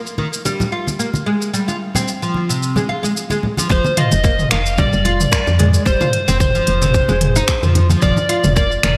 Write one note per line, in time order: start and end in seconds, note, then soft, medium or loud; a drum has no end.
0.00 3.71 F5 medium
0.06 shaker soft
0.18 0.27 D#3 medium
0.18 high conga medium
0.33 shaker medium
0.45 0.71 G3 medium
0.45 muted conga medium
0.45 shaker soft
0.60 low conga medium
0.60 shaker soft
0.72 0.87 F4 medium
0.87 high conga medium
0.87 shaker medium
0.99 1.08 A#3 medium
0.99 shaker medium
1.14 muted conga soft
1.14 high conga medium
1.14 shaker soft
1.26 1.52 G#3 medium
1.42 shaker medium
1.54 1.67 G3 medium
1.54 shaker soft
1.68 1.75 F4 medium
1.68 muted conga soft
1.68 shaker soft
1.95 2.07 C4 medium
1.95 muted conga soft
1.95 low conga medium
1.95 shaker medium
2.08 shaker medium
2.22 2.48 F3 medium
2.22 shaker soft
2.34 high conga medium
2.49 2.75 C3 medium
2.49 shaker medium
2.63 shaker medium
2.76 2.88 G#3 medium
2.76 muted conga medium
2.76 high conga medium
2.76 low conga medium
2.76 shaker soft
2.89 3.03 F4 medium
2.89 high conga soft
3.03 3.11 G#3 medium
3.03 muted conga soft
3.03 shaker medium
3.17 shaker medium
3.30 3.42 G#3 medium
3.30 high conga medium
3.30 shaker soft
3.43 low conga medium
3.57 3.68 F3 medium
3.57 muted conga soft
3.57 high conga soft
3.57 shaker medium
3.69 3.80 F1 loud
3.69 3.84 F3 medium
3.69 3.99 C5 medium
3.69 kick loud
3.69 shaker medium
3.85 muted conga medium
3.85 high conga medium
3.85 shaker soft
3.97 4.11 F4 medium
3.97 4.51 D#5 loud
3.97 closed hi-hat medium
3.97 mid tom medium
4.12 4.45 F1 medium
4.12 muted conga soft
4.12 shaker medium
4.24 4.32 A#3 medium
4.24 kick loud
4.24 shaker medium
4.39 mid tom medium
4.39 shaker soft
4.51 4.85 F1 medium
4.51 4.59 D#3 medium
4.51 4.79 F5 loud
4.51 finger snap medium
4.51 closed hi-hat medium
4.66 shaker medium
4.78 5.04 G3 medium
4.78 5.83 D5 loud
4.78 kick loud
4.78 mid tom medium
4.78 muted conga medium
4.78 shaker medium
4.93 5.26 F1 loud
4.93 shaker soft
5.05 5.19 F4 medium
5.05 closed hi-hat medium
5.05 low conga medium
5.20 mid tom medium
5.20 shaker medium
5.32 5.40 A#3 medium
5.32 finger snap medium
5.32 kick loud
5.32 shaker medium
5.47 5.80 F2 loud
5.47 muted conga medium
5.47 shaker soft
5.59 5.85 G#3 medium
5.59 closed hi-hat medium
5.59 mid tom medium
5.59 high conga medium
5.74 shaker medium
5.86 5.96 F1 loud
5.86 5.99 G3 medium
5.86 6.39 C5 medium
5.86 kick loud
5.86 shaker medium
6.01 6.08 F4 medium
6.01 mid tom medium
6.01 muted conga medium
6.01 high conga medium
6.01 shaker soft
6.13 closed hi-hat medium
6.28 6.60 F1 loud
6.28 6.40 C4 loud
6.28 muted conga medium
6.28 shaker medium
6.40 7.72 C5 medium
6.40 kick loud
6.40 mid tom medium
6.40 shaker medium
6.55 6.81 F3 medium
6.55 shaker soft
6.67 7.01 F1 medium
6.67 closed hi-hat medium
6.82 7.08 C3 medium
6.82 mid tom medium
6.82 shaker medium
6.94 kick loud
6.94 shaker medium
7.08 7.42 F1 loud
7.08 7.35 G#3 medium
7.08 muted conga medium
7.08 high conga medium
7.08 shaker soft
7.21 closed hi-hat medium
7.21 mid tom medium
7.36 7.43 D#4 loud
7.36 muted conga soft
7.36 shaker medium
7.48 finger snap medium
7.48 kick loud
7.48 shaker medium
7.63 7.95 F2 medium
7.63 7.89 F3 medium
7.63 mid tom medium
7.63 shaker soft
7.75 closed hi-hat medium
7.75 high conga medium
7.90 8.01 F3 medium
7.90 muted conga soft
7.90 high conga medium
7.90 shaker medium
8.02 8.12 F1 loud
8.02 8.17 F3 medium
8.02 8.55 D5 medium
8.02 kick loud
8.02 mid tom medium
8.02 shaker medium
8.17 muted conga medium
8.17 high conga medium
8.17 shaker soft
8.29 8.43 F4 medium
8.29 closed hi-hat medium
8.44 8.77 F1 loud
8.44 mid tom medium
8.44 muted conga medium
8.44 shaker medium
8.56 8.65 A#3 medium
8.56 8.97 D5 medium
8.56 kick loud
8.56 shaker medium
8.71 shaker soft
8.83 8.97 F1 medium
8.83 8.92 D#3 medium
8.83 finger snap medium
8.83 closed hi-hat medium
8.83 mid tom medium